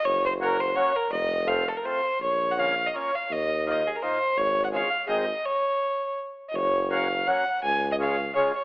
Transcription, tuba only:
\new Staff \with { instrumentName = "Tuba" } { \clef bass \time 3/4 \key des \major \tempo 4 = 167 ges,,2. | f,,2. | bes,,2. | ees,2. |
aes,,2 aes,,4 | r2. | \key fis \major fis,,2. | cis,2. | }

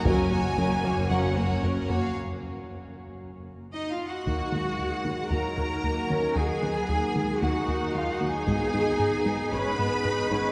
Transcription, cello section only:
\new Staff \with { instrumentName = "Cello section" } { \time 4/4 \key ees \minor \tempo 4 = 114 ges,1 | r2. \tuplet 3/2 { ees'8 f'8 ges'8~ } | ges'2 bes'2 | aes'2 ges'4 \tuplet 3/2 { f'8 ges'8 aes'8~ } |
aes'2 ces''2 | }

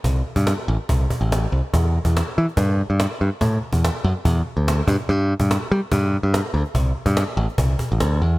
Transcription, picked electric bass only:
\new Staff \with { instrumentName = "Picked electric bass" } { \clef bass \time 4/4 \key c \lydian \tempo 4 = 143 c,8 r16 g,8 r16 a,,16 r16 c,8 r16 a,,8. c,16 r16 | e,8. e,8 r16 e16 r16 g,8. g,8 r16 g,16 r16 | a,8 r16 e,8 r16 fis,16 r16 e,8 r16 d,8. g,16 r16 | g,8. g,8 r16 g16 r16 g,8. g,8 r16 d,16 r16 |
c,8 r16 g,8 r16 a,,16 r16 c,8 r16 a,,16 d,8 e,8 | }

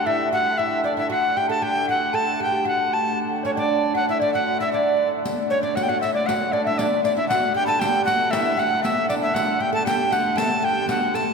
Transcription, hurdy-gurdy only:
\new Staff \with { instrumentName = "Hurdy-gurdy" } { \clef bass \time 2/4 \key d \major \tempo 4 = 116 <d a>2 | <d a>2~ | <d a>2~ | <d a>2~ |
<d a>2 | <d a>2~ | <d a>2~ | <d a>2~ |
<d a>2 | <d a>2~ | <d a>2 | }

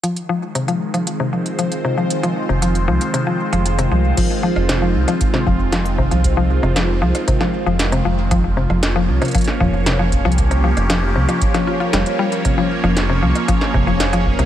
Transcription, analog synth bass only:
\new Staff \with { instrumentName = "Analog synth bass" } { \clef bass \time 4/4 \key f \minor \tempo 4 = 116 r1 | r8. f,,8. c,16 r4 f,,8. c,8 | r8. f,,8. c,16 r8. f,,4~ f,,16 c,16~ | c,8. f,,8. c,16 r4 f,,8. f,,8~ |
f,,8. f,,8. c,16 r8. f,,4~ f,,16 c,16~ | c,8. f,,8. c,16 r4 r16 f,,16 r8. | r8. f,,8. c,16 r8. f,,4~ f,,16 c,16 | }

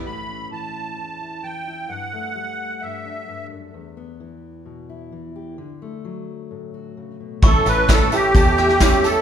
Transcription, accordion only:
\new Staff \with { instrumentName = "Accordion" } { \time 4/4 \key g \lydian \tempo 4 = 130 b''4 a''2 g''4 | fis''2 e''4. r8 | r1 | r1 |
a'8 b'8 a'8 g'2 a'8 | }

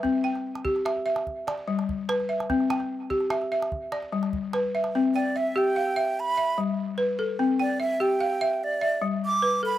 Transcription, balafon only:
\new Staff \with { instrumentName = "Balafon" } { \time 12/8 \key c \major \tempo 4. = 98 << { e''8 g''4. e''4. d''4. r8 e''8~ | e''8 g''4. e''4. d''4. r8 e''8~ | e''8 g''8 e''4 f''4. e''4. r8 a'8~ | a'8 g''8 e''4 f''4. e''4. r8 a'8 | } \\ { c'4 r8 g'4 e''8 r4 g4 b'4 | c'4 r8 g'4 e''8 r4 g4 b'4 | c'4 r8 g'4 e''8 r4 g4 b'4 | c'4 r8 g'4 e''8 r4 g4 b'4 | } >> }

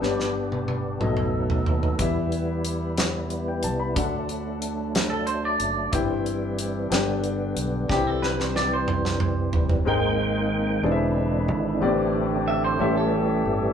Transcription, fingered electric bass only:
\new Staff \with { instrumentName = "Fingered electric bass" } { \clef bass \time 6/8 \key c \major \tempo 4. = 61 g,,4. b,,4 dis,8 | e,2~ e,8 c,8 | d,2~ d,8 fis,,8 | g,,4. g,,4 b,,8 |
c,2~ c,8 f,,8 | aes,,4. e,,4 gis,,8 | a,,4. a,,4 g,,8 | }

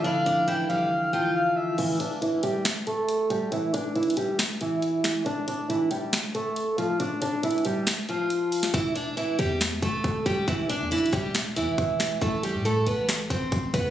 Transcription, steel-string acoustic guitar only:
\new Staff \with { instrumentName = "Steel-string acoustic guitar" } { \time 4/4 \key e \phrygian \tempo 4 = 138 <d' d''>8 <d' d''>8 <e e'>8 <g g'>8 r8 <f f'>4. | <e e'>8 <d' d''>8 <e e'>8 <g g'>8 r8 <a a'>4 <g g'>8 | <e e'>8 <d' d''>8 <e e'>8 <g g'>8 r8 <e e'>4. | <d' d''>8 <d' d''>8 <e e'>8 <g g'>8 r8 <a a'>4 <f f'>8 |
<d' d''>8 <d' d''>8 <e e'>8 <g g'>8 r8 <f f'>4. | <e e'>8 <d' d''>8 <e e'>8 <g g'>8 r8 <a a'>4 <g g'>8 | <e e'>8 <d' d''>8 <e e'>8 <g g'>8 r8 <e e'>4. | <a a'>8 <g g'>8 <a a'>8 <b b'>8 r8 <c' c''>4 <b b'>8 | }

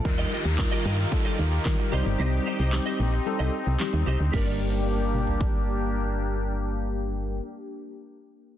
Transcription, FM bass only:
\new Staff \with { instrumentName = "FM bass" } { \clef bass \time 4/4 \key g \minor \tempo 4 = 112 ees,8 r16 ees,8 r16 g,8 r8 ees,8 ees16 r16 c,16 g,,16 | c,8 r16 c,8 r16 bes,,8 r16 c,16 r16 c,16 r16 ees,16 c,16 d,16 | g,,1~ | g,,1 | }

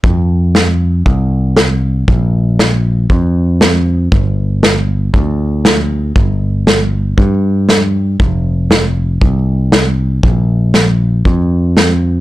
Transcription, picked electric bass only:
\new Staff \with { instrumentName = "Picked electric bass" } { \clef bass \time 4/4 \key bes \lydian \tempo 4 = 118 f,2 c,2 | bes,,2 f,2 | g,,2 d,2 | g,,2 g,2 |
f,,2 c,2 | bes,,2 f,2 | }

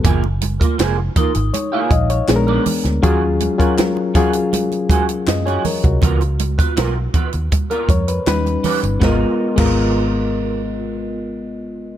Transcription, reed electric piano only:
\new Staff \with { instrumentName = "Reed electric piano" } { \time 4/4 \key gis \dorian \tempo 4 = 80 << { r2 cis''16 eis''16 dis''16 cis''8 r8. | r2. dis''16 cis''16 ais'16 fis'16~ | fis'16 r2 ais'16 cis''16 b'8 r8. | r1 | } \\ { r2. <gis b d' gis' ais'>8. r16 | <fis cis' eis' gis'>8 r16 <fis cis' eis' ais'>8 r16 <fis cis' eis' gis'>4. r4 | r2. <g cis' dis' b'>8. r16 | <gis b eis' ais'>16 r8 <gis b eis' ais'>2.~ <gis b eis' ais'>16 | } >> }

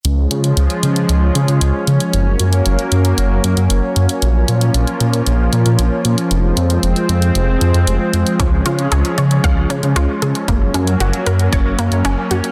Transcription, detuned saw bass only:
\new Staff \with { instrumentName = "Detuned saw bass" } { \clef bass \time 4/4 \key des \major \tempo 4 = 115 des,8 des8 des,16 r16 des8 des,8 des16 des16 des,16 r16 des16 r16 | ges,,8 ges,8 ges,,16 r16 ges,8 ges,,8 ges,16 ges,16 ges,,16 r16 ges,16 r16 | bes,,8 bes,8 bes,,16 r16 bes,8 bes,,8 bes,16 bes,16 bes,,16 r16 bes,16 r16 | f,,8 f,8 f,,16 r16 f,8 f,,8 f,16 f,16 f,,16 r16 f,16 r16 |
des,8 des8 des,16 r16 des8 des,8 des16 des16 des,16 r16 des16 r16 | ges,,8 ges,8 ges,,16 r16 ges,8 ges,,8 ges,16 ges,16 ges,,16 r16 ges,16 r16 | }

